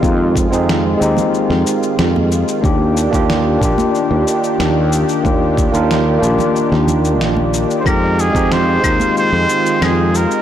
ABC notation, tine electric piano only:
X:1
M:4/4
L:1/16
Q:1/4=92
K:Fdor
V:1 name="Tine electric piano"
[A,CEF] z2 [A,CEA]3 [A,CEG]8- [A,CEG]2 | [B,DFG]3 [B,DFG]3 [B,DFG]8- [B,DFG]2 | [B,DFG] z2 [B,DFB]3 [B,DFG]8- [B,DFG]2 | [A,CEG]3 [A,CEG]3 [A,CEF]8- [A,CEF]2 |]